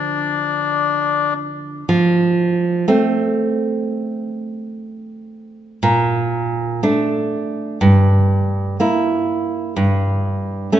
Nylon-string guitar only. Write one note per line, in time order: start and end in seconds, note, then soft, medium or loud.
0.00 1.83 D3 soft
0.00 1.84 F3 soft
0.00 1.85 D4 soft
1.89 2.85 F3 medium
2.88 5.78 A3 soft
2.88 5.78 C4 soft
5.83 6.80 A#2 medium
6.83 7.78 A3 soft
6.83 7.78 D4 soft
7.81 8.76 G2 medium
8.80 9.73 A#3 soft
8.80 9.73 E4 soft
9.76 10.69 G2 medium
10.72 10.80 A3 soft
10.72 10.80 C#4 soft